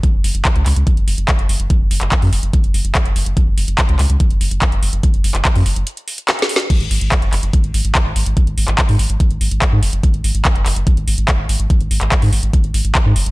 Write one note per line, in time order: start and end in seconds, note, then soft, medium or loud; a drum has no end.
0.03 kick loud
0.03 closed hi-hat medium
0.14 0.21 F#1 medium
0.24 0.31 F#1 loud
0.24 open hi-hat loud
0.35 0.42 F#1 medium
0.35 closed hi-hat medium
0.45 kick loud
0.45 clap loud
0.45 closed hi-hat medium
0.56 0.63 C#2 medium
0.56 closed hi-hat soft
0.66 0.73 C#2 loud
0.66 clap soft
0.66 open hi-hat loud
0.76 0.83 C#2 medium
0.76 closed hi-hat soft
0.87 kick loud
0.87 closed hi-hat medium
0.97 1.04 F#1 medium
0.97 closed hi-hat soft
1.08 1.15 F#1 loud
1.08 open hi-hat loud
1.18 1.25 F#1 medium
1.18 closed hi-hat soft
1.28 kick loud
1.28 clap loud
1.28 closed hi-hat medium
1.39 1.46 F#1 medium
1.39 closed hi-hat soft
1.49 1.56 F#1 loud
1.49 open hi-hat loud
1.60 1.67 F#1 medium
1.60 closed hi-hat soft
1.70 kick loud
1.70 closed hi-hat medium
1.81 1.88 F#1 medium
1.91 1.98 F#1 loud
1.91 open hi-hat loud
2.01 2.08 F#1 medium
2.01 clap soft
2.01 closed hi-hat medium
2.12 kick loud
2.12 clap loud
2.12 closed hi-hat medium
2.22 2.29 F#2 medium
2.22 open hi-hat medium
2.33 2.40 F#1 loud
2.33 open hi-hat loud
2.43 2.50 F#1 medium
2.43 closed hi-hat medium
2.53 kick loud
2.53 closed hi-hat medium
2.64 2.71 F#1 medium
2.64 closed hi-hat soft
2.74 2.81 F#1 loud
2.74 open hi-hat loud
2.85 2.92 F#1 medium
2.85 closed hi-hat medium
2.95 kick loud
2.95 clap loud
2.95 closed hi-hat medium
3.06 3.12 F#1 medium
3.06 closed hi-hat soft
3.16 3.23 F#1 loud
3.16 open hi-hat loud
3.26 3.33 F#1 medium
3.26 closed hi-hat medium
3.37 kick loud
3.37 closed hi-hat medium
3.47 3.54 F#1 medium
3.58 3.65 F#1 loud
3.58 open hi-hat loud
3.68 3.75 F#1 medium
3.68 closed hi-hat medium
3.78 kick loud
3.78 clap loud
3.78 closed hi-hat medium
3.89 3.96 C#2 medium
3.89 closed hi-hat soft
3.99 4.06 C#2 loud
3.99 clap soft
3.99 open hi-hat loud
4.10 4.17 C#2 medium
4.10 closed hi-hat medium
4.20 kick loud
4.20 closed hi-hat medium
4.31 4.37 F#1 medium
4.31 closed hi-hat soft
4.41 4.48 F#1 loud
4.41 open hi-hat loud
4.51 4.58 F#1 medium
4.51 closed hi-hat medium
4.62 kick loud
4.62 clap loud
4.62 closed hi-hat medium
4.72 4.79 F#1 medium
4.72 closed hi-hat soft
4.83 4.90 F#1 loud
4.83 open hi-hat loud
4.93 5.00 F#1 medium
4.93 closed hi-hat medium
5.03 kick loud
5.03 closed hi-hat medium
5.14 5.21 F#1 medium
5.14 closed hi-hat soft
5.24 5.31 F#1 loud
5.24 open hi-hat loud
5.35 5.42 F#1 medium
5.35 clap soft
5.35 closed hi-hat medium
5.45 kick loud
5.45 clap loud
5.45 closed hi-hat medium
5.55 5.62 F#2 medium
5.55 open hi-hat medium
5.66 5.73 F#1 loud
5.66 open hi-hat loud
5.76 5.83 F#1 medium
5.76 closed hi-hat medium
5.87 closed hi-hat medium
5.97 closed hi-hat soft
6.08 open hi-hat loud
6.18 closed hi-hat medium
6.28 snare medium
6.28 clap loud
6.28 closed hi-hat medium
6.39 snare medium
6.39 closed hi-hat soft
6.49 open hi-hat loud
6.56 snare loud
6.56 closed hi-hat medium
6.70 kick loud
6.70 closed hi-hat medium
6.70 crash loud
6.81 6.87 G#1 medium
6.81 closed hi-hat soft
6.91 6.98 G#1 loud
6.91 open hi-hat loud
7.01 7.08 G#1 medium
7.01 closed hi-hat medium
7.12 kick loud
7.12 clap loud
7.12 closed hi-hat medium
7.22 7.29 F#1 medium
7.22 closed hi-hat soft
7.33 7.40 F#1 loud
7.33 clap soft
7.33 open hi-hat loud
7.43 7.50 F#1 medium
7.43 closed hi-hat medium
7.53 kick loud
7.53 closed hi-hat medium
7.64 7.71 G#1 medium
7.64 closed hi-hat soft
7.74 7.81 G#1 loud
7.74 open hi-hat loud
7.85 7.92 G#1 medium
7.85 closed hi-hat medium
7.95 kick loud
7.95 clap loud
7.95 closed hi-hat medium
8.06 8.12 G#1 medium
8.16 8.23 G#1 loud
8.16 open hi-hat loud
8.26 8.33 G#1 medium
8.26 closed hi-hat medium
8.37 kick loud
8.37 closed hi-hat medium
8.47 8.54 G#1 medium
8.47 closed hi-hat soft
8.58 8.65 G#1 loud
8.58 open hi-hat loud
8.68 8.75 G#1 medium
8.68 clap soft
8.68 closed hi-hat medium
8.78 kick loud
8.78 clap loud
8.78 closed hi-hat medium
8.89 8.96 G#2 medium
8.89 open hi-hat medium
8.99 9.06 G#1 loud
8.99 open hi-hat loud
9.10 9.17 G#1 medium
9.10 closed hi-hat medium
9.20 kick loud
9.20 closed hi-hat medium
9.31 9.38 G#1 medium
9.31 closed hi-hat soft
9.41 9.48 G#1 loud
9.41 open hi-hat loud
9.51 9.58 G#1 medium
9.51 closed hi-hat medium
9.62 kick loud
9.62 clap loud
9.62 closed hi-hat medium
9.72 9.79 G#2 medium
9.83 9.90 F#1 loud
9.83 open hi-hat loud
9.93 10.00 F#1 medium
9.93 closed hi-hat medium
10.03 kick loud
10.03 closed hi-hat medium
10.14 10.21 G#1 medium
10.14 closed hi-hat soft
10.24 10.31 G#1 loud
10.24 open hi-hat loud
10.35 10.42 G#1 medium
10.35 closed hi-hat medium
10.45 kick loud
10.45 clap loud
10.45 closed hi-hat medium
10.56 10.62 F#1 medium
10.56 closed hi-hat soft
10.66 10.73 F#1 loud
10.66 clap soft
10.66 open hi-hat loud
10.76 10.83 F#1 medium
10.76 closed hi-hat medium
10.87 kick loud
10.87 closed hi-hat medium
10.97 11.04 G#1 medium
10.97 closed hi-hat soft
11.08 11.15 G#1 loud
11.08 open hi-hat loud
11.18 11.25 G#1 medium
11.18 closed hi-hat medium
11.28 kick loud
11.28 clap loud
11.28 closed hi-hat medium
11.39 11.46 G#1 medium
11.49 11.56 G#1 loud
11.49 open hi-hat loud
11.60 11.67 G#1 medium
11.60 closed hi-hat medium
11.70 kick loud
11.70 closed hi-hat medium
11.81 11.87 G#1 medium
11.81 closed hi-hat soft
11.91 11.98 G#1 loud
11.91 open hi-hat loud
12.01 12.08 G#1 medium
12.01 clap soft
12.01 closed hi-hat medium
12.12 kick loud
12.12 clap loud
12.12 closed hi-hat medium
12.22 12.29 G#2 medium
12.22 open hi-hat medium
12.33 12.40 G#1 loud
12.33 open hi-hat loud
12.43 12.50 G#1 medium
12.43 closed hi-hat medium
12.53 kick loud
12.53 closed hi-hat medium
12.64 12.71 G#1 medium
12.64 closed hi-hat soft
12.74 12.81 G#1 loud
12.74 open hi-hat loud
12.85 12.92 G#1 medium
12.85 closed hi-hat medium
12.95 kick loud
12.95 clap loud
12.95 closed hi-hat medium
13.06 13.12 G#2 medium
13.16 13.23 F#1 loud
13.16 open hi-hat loud
13.26 13.31 F#1 medium
13.26 closed hi-hat medium